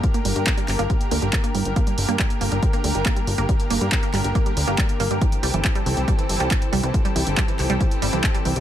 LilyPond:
<<
  \new Staff \with { instrumentName = "Analog synth pad" } { \time 4/4 \key g \dorian \tempo 4 = 139 <d bes g' bes'>8 <d bes g' bes'>16 <d bes g' bes'>8 <d bes g' bes'>16 <d bes g' bes'>8 <d bes g' bes'>8 <d bes g' bes'>8 <d bes g' bes'>8 r16 <d bes g' bes'>16 | <d bes g' bes'>8 <d bes g' bes'>16 <d bes g' bes'>8 <d bes g' bes'>16 <d bes g' bes'>8 <d bes g' bes'>8 <d bes g' bes'>8 <d bes g' bes'>8 r16 <d bes g' bes'>16 | <d bes g' bes'>8 <d bes g' bes'>16 <d bes g' bes'>8 <d bes g' bes'>16 <d bes g' bes'>8 <d bes g' bes'>8 <d bes g' bes'>8 <d bes g' bes'>8 r16 <d bes g' bes'>16 | <e c' g' a'>8 <e c' g' a'>16 <e c' g' a'>8 <e c' g' a'>16 <e c' g' a'>8 <e c' g' a'>8 <e c' g' a'>8 <e c' g' a'>8 r16 <e c' g' a'>16 |
<e c' g' a'>8 <e c' g' a'>16 <e c' g' a'>8 <e c' g' a'>16 <e c' g' a'>8 <e c' g' a'>8 <e c' g' a'>8 <e c' g' a'>8 r16 <e c' g' a'>16 | }
  \new Staff \with { instrumentName = "Synth arpeggio sound" } { \clef bass \time 4/4 \key g \dorian r16 bes16 g16 r16 bes16 g16 r16 bes16 g16 r16 bes16 g16 r16 bes16 g16 r16 | bes16 g16 r16 bes16 g16 r16 bes16 g16 r16 bes16 g16 r16 bes16 g16 r16 bes16 | g16 r16 bes16 g16 r16 bes16 g16 r16 bes16 g16 r16 bes16 g16 r16 bes16 g16 | e16 r16 g16 e16 r16 g16 e16 r16 g16 e16 r16 g16 e16 r16 g16 e16 |
r16 g16 e16 r16 g16 e16 r16 g16 e16 r16 g16 e16 r16 g16 e16 r16 | }
  \new Staff \with { instrumentName = "Analog synth bass" } { \clef bass \time 4/4 \key g \dorian r8 g,,16 g,16 r8 g,,16 g,,16 r8 d,16 g,,16 r8 g,,16 g,,16 | r8 g,,16 g,16 r8 g,,16 g,,16 r8 d,16 g,,16 r8 g,,16 g,,16 | r8 g,,16 g,16 r8 g,,16 g,,16 r8 d,16 g,,16 r8 g,,16 g,16 | r8 c,16 g,,16 r8 c,16 c,16 r8 g,,16 c,16 r8 c,16 c,16 |
r8 c,16 g,,16 r8 c,16 c,16 r8 g,,16 c,16 r8 c,16 c,16 | }
  \new DrumStaff \with { instrumentName = "Drums" } \drummode { \time 4/4 <hh bd>16 hh16 hho16 hh16 <hc hh bd>16 hh16 <hc hho>16 hh16 <hh bd>16 hh16 hho16 hh16 <hc hh bd>16 hh16 hho16 hh16 | <hh bd>16 hh16 hho16 hh16 <hc hh bd>16 hh16 hho16 hh16 <hh bd>16 hh16 hho16 hh16 <hc hh bd>16 hh16 hho16 hh16 | <hh bd>16 hh16 hho16 hh16 <hc hh bd>16 hh16 <hc hho>16 hh16 <hh bd>16 hh16 hho16 hh16 <hc hh bd>16 hh16 hho16 hh16 | <hh bd>16 hh16 hho16 hh16 <hc hh bd>16 hh16 hho16 hh16 <hh bd>16 hh16 hho16 hh16 <hc hh bd>16 hh16 hho16 hh16 |
<hh bd>16 hh16 hho16 hh16 <hc hh bd>16 hh16 <hc hho>16 hh16 <hh bd>16 hh16 hho16 hh16 <hc hh bd>16 hh16 hho16 hh16 | }
>>